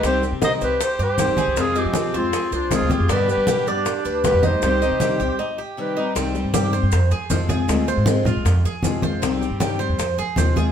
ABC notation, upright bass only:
X:1
M:4/4
L:1/16
Q:1/4=157
K:Cm
V:1 name="Upright bass" clef=bass
C,,3 C,3 C,,2 z2 G,,3 =B,,,2 C,, | F,,3 F,3 F,,2 z2 C,,3 D,,2 F,, | G,,3 G,3 G,,2 z2 D,,3 F,,2 D,, | C,,3 C,3 C,, z8 z |
C,,3 G,,4 G,, F,,2 F,2 F,,4 | D,,3 A,,4 C,, F,,2 z2 F,,4 | C,,3 G,,4 =E,, F,,2 F,2 _E,,4 |]